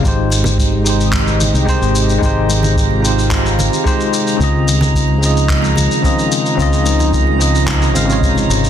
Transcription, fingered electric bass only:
\new Staff \with { instrumentName = "Fingered electric bass" } { \clef bass \time 4/4 \key aes \major \tempo 4 = 110 aes,,2~ aes,,8. c,8 aes,,8. | aes,,2~ aes,,8. r4 r16 | des,2~ des,8. r4 r16 | des,2~ des,8 aes,,4 aes,,8 | }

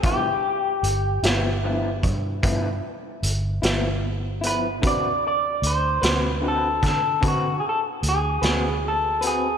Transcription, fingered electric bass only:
\new Staff \with { instrumentName = "Fingered electric bass" } { \clef bass \time 12/8 \key d \mixolydian \tempo 4. = 50 g,,4 g,,8 g,,4 g,8 g,8 r8 g,,8 g,,4. | d,4 d,8 d,4 d8 d8 r8 d,8 d,4. | }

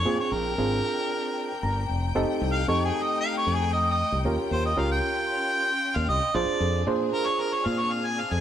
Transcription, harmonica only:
\new Staff \with { instrumentName = "Harmonica" } { \time 4/4 \key bes \mixolydian \tempo 4 = 114 des''16 des''16 bes'2. r8 | \tuplet 3/2 { r4 f''8 des''8 aes'8 ees''8 f''8 des''8 aes'8 ees''8 ees''8. r16 } | r8 c''16 ees''16 f''16 g''2 f''16 ees''8 | d''4 r8 bes'16 des''16 bes'16 des''16 f''16 des''16 f''16 aes''16 f''16 aes''16 | }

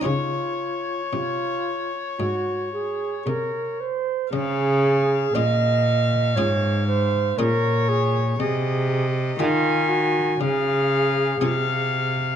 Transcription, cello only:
\new Staff \with { instrumentName = "Cello" } { \clef bass \time 4/4 \key des \major \tempo 4 = 59 des4 c4 aes,4 c4 | des4 bes,4 aes,4 bes,4 | c4 ees4 des4 c4 | }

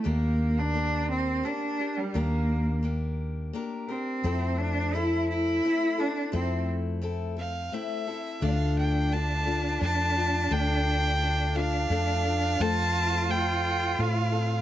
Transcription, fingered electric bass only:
\new Staff \with { instrumentName = "Fingered electric bass" } { \clef bass \time 3/4 \key d \minor \tempo 4 = 86 ees,2 r4 | ees,2 r4 | f,2 r4 | f,2 r4 |
d,2 f,4 | d,2 f,4 | f,2 a,4 | }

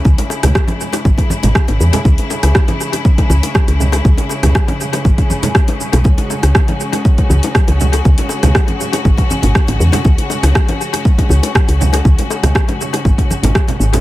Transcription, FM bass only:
\new Staff \with { instrumentName = "FM bass" } { \clef bass \time 4/4 \key cis \minor \tempo 4 = 120 cis,16 r8 cis,16 r4 gis,,16 r8 gis,,16 r16 gis,,16 e,16 r16 | cis,16 r8 cis,16 r4. cis,16 r8 cis,8. | cis,16 r8 cis,16 r4 gis,,16 r4. b,,16 | cis,16 r8 cis,16 r4. cis,16 r8 cis,8. |
cis,16 r8 cis,16 r4 gis,,16 r8 gis,,16 r16 gis,,16 e,16 r16 | cis,16 r8 cis,16 r4. cis,16 r8 cis,8. | cis,16 r8 cis,16 r4 gis,,16 r8 gis,,16 r8 gis,,8 | }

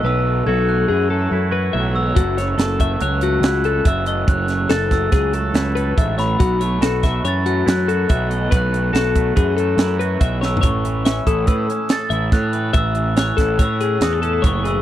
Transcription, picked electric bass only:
\new Staff \with { instrumentName = "Picked electric bass" } { \clef bass \time 5/4 \key a \major \tempo 4 = 142 b,,4 b,,4 fis,4 fis,4 b,,4 | fis,,4 fis,,4 cis,4 cis,4 fis,,4 | fis,,4 fis,,4 cis,4 cis,4 a,,4 | b,,4 b,,4 fis,4 fis,4 b,,4 |
b,,4 b,,4 fis,4 fis,4 b,,4 | a,,4. a,,8 a,8 r4 a,,8 a,4 | a,,4. a,,8 a,4 e,4 fis,,4 | }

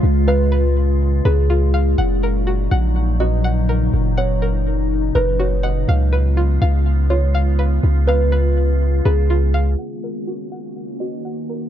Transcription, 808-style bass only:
\new Staff \with { instrumentName = "808-style bass" } { \clef bass \time 4/4 \key fis \major \tempo 4 = 123 cis,2~ cis,8 cis,4. | fis,,4. ais,,2~ ais,,8 | fis,,2~ fis,,8 fis,,4. | cis,4. cis,2~ cis,8 |
cis,2~ cis,8 cis,4. | r1 | }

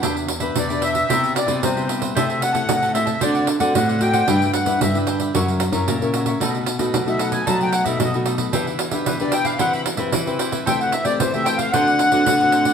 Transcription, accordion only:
\new Staff \with { instrumentName = "Accordion" } { \time 4/4 \key e \minor \tempo 4 = 113 r4 d''8 e''4 d''8 c''8 r8 | e''8 fis''4 e''8 d''8 r8 fis''8 g''8~ | g''8 fis''8 e''8 r2 r8 | r4 r16 e''16 fis''16 gis''16 a''16 g''16 fis''16 e''16 dis''8 r8 |
r4 b'16 d''16 g''16 f''16 fis''16 b''16 r4. | g''16 fis''16 e''16 d''16 c''16 e''16 g''16 f''16 fis''2 | }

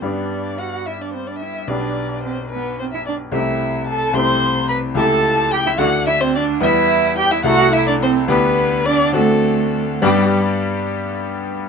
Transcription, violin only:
\new Staff \with { instrumentName = "Violin" } { \time 6/8 \key g \major \tempo 4. = 72 d''4 fis''8 e''16 d''16 c''16 d''16 e''8 | d''4 c''8 b'8 c''16 e''16 d''8 | e''4 a''8 c'''4 b''8 | a''4 g''16 e''16 fis''8 e''16 c''16 d''8 |
e''4 g''16 e''16 fis''8 e''16 d''16 c''8 | b'4 d''8 a'4. | g'8 r2 r8 | }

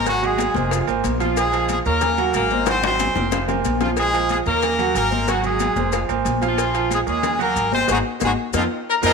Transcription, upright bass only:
\new Staff \with { instrumentName = "Upright bass" } { \clef bass \time 4/4 \key aes \mixolydian \tempo 4 = 184 aes,,4. f,,4 aes,,8 bes,,4~ | bes,,4. ees,4. aes,,4~ | aes,,4. f,,4. bes,,4~ | bes,,4. ees,4. aes,,4~ |
aes,,4. f,,4 aes,,8 bes,,4~ | bes,,4. ees,4. aes,,4 | aes,,8 r8 aes,,8 r8 f,8 r4 f,8 | }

